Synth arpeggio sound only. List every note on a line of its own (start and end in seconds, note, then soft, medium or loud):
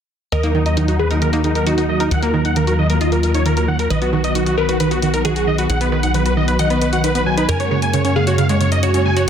0.32 0.36 D#3 medium
0.44 0.47 A#3 loud
0.55 0.57 D#3 medium
0.66 0.68 D#4 medium
0.77 0.81 D#3 medium
0.88 0.92 F#4 medium
0.99 1.02 D#3 medium
1.11 1.17 A#4 medium
1.22 1.26 D#3 medium
1.33 1.37 A#3 loud
1.44 1.48 D#3 medium
1.55 1.58 D#4 medium
1.67 1.71 D#3 medium
1.78 1.82 F#4 medium
1.89 1.93 D#3 medium
2.00 2.06 A#4 loud
2.11 2.15 D#3 medium
2.23 2.27 A#3 loud
2.34 2.36 D#3 loud
2.45 2.47 D#4 medium
2.56 2.60 D#3 medium
2.67 2.71 F#4 medium
2.79 2.81 D#3 medium
2.90 2.96 A#4 loud
3.01 3.05 D#3 medium
3.12 3.16 A#3 medium
3.23 3.27 D#3 medium
3.34 3.37 D#4 medium
3.46 3.50 D#3 medium
3.57 3.61 F#4 medium
3.68 3.72 D#3 medium
3.79 3.85 A#4 loud
3.90 3.94 D#3 medium
4.02 4.06 B3 loud
4.13 4.15 D#3 loud
4.24 4.26 D#4 medium
4.35 4.39 D#3 medium
4.46 4.50 F#4 medium
4.58 4.60 D#3 medium
4.69 4.75 B4 loud
4.80 4.84 D#3 medium
4.91 4.95 B3 medium
5.03 5.06 D#3 medium
5.14 5.16 D#4 medium
5.25 5.29 D#3 medium
5.36 5.40 F#4 medium
5.47 5.51 D#3 medium
5.58 5.64 B4 loud
5.70 5.74 D#3 medium
5.81 5.85 B3 loud
5.92 5.94 D#3 loud
6.03 6.06 D#4 medium
6.14 6.18 D#3 medium
6.26 6.30 F#4 medium
6.37 6.39 D#3 medium
6.48 6.54 B4 loud
6.59 6.63 D#3 medium
6.70 6.74 B3 medium
6.82 6.86 B3 medium
6.93 6.99 F#4 medium
7.04 7.08 D#3 medium
7.15 7.19 B3 medium
7.26 7.30 F#3 medium
7.38 7.41 D#4 medium
7.49 7.53 C#3 medium
7.60 7.64 F#3 medium
7.71 7.74 C#3 medium
7.82 7.85 A#3 medium
7.94 7.98 C#3 medium
8.05 8.09 C#4 medium
8.16 8.18 C#3 medium
8.27 8.33 F#4 loud
8.38 8.42 C#3 medium
8.49 8.53 G#3 medium
8.61 8.65 C#3 medium
8.72 8.74 A#3 medium
8.83 8.87 C#3 medium
8.94 8.98 C#4 medium
9.05 9.09 C#3 medium
9.17 9.23 F#4 loud